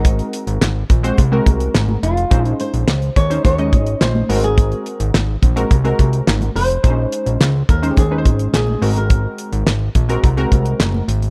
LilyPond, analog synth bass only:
\new Staff \with { instrumentName = "Analog synth bass" } { \clef bass \time 4/4 \key aes \mixolydian \tempo 4 = 106 aes,,8 r16 aes,,16 aes,,8 bes,,8 c,8 c,8 aes,,8 f,,8 | bes,,8 r16 bes,,16 des,8 ees,8 ees,8 aes,,8 bes,,8 aes,,8~ | aes,,8 r16 aes,,16 aes,,8 bes,,8 c,8 c,8 aes,,8 f,,8 | bes,,8 r16 bes,,16 des,8 ees,8 ees,8 aes,,8 bes,,8 aes,,8~ |
aes,,8 r16 aes,,16 aes,,8 bes,,8 c,8 c,8 ges,,8 aes,,8 | }